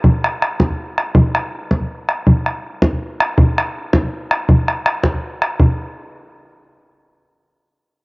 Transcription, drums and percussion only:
0.04 bodhran medium
0.24 bodhran medium
0.42 bodhran medium
0.60 bodhran medium
0.70 bodhran soft
0.98 bodhran medium
1.15 bodhran medium
1.35 bodhran medium
1.71 bodhran medium
1.80 bodhran soft
2.09 bodhran medium
2.27 bodhran medium
2.46 bodhran medium
2.82 bodhran medium
2.92 bodhran soft
3.20 bodhran medium
3.38 bodhran medium
3.58 bodhran medium
3.93 bodhran medium
4.03 bodhran soft
4.31 bodhran medium
4.49 bodhran medium
4.68 bodhran medium
4.86 bodhran medium
5.03 bodhran medium
5.14 bodhran soft
5.42 bodhran medium
5.60 bodhran medium

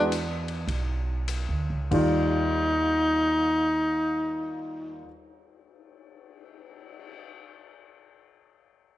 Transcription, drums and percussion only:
0.12 hi-hat pedal medium
0.12 ride medium
0.48 ride soft
0.68 kick soft
0.68 ride medium
1.28 hi-hat pedal soft
1.28 ride medium
1.91 kick soft
1.91 crash soft
2.36 cymbal swell soft

